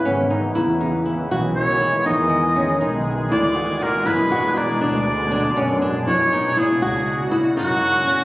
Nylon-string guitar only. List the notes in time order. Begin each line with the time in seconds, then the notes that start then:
0.05 C#4
0.30 D#4
0.55 E4
0.81 D#4
1.05 E4
1.31 F#4
1.81 E4
2.06 D#4
2.56 C#4
2.81 D#4
3.32 E4
3.56 F#4
3.81 F#4
4.06 E4
4.32 F#4
4.56 E4
4.81 D4
5.31 D4
5.57 C#4
5.82 D4
6.07 E4
6.33 D#4
6.57 E4
6.82 F#4
7.31 E4
7.57 D#4
8.07 C#4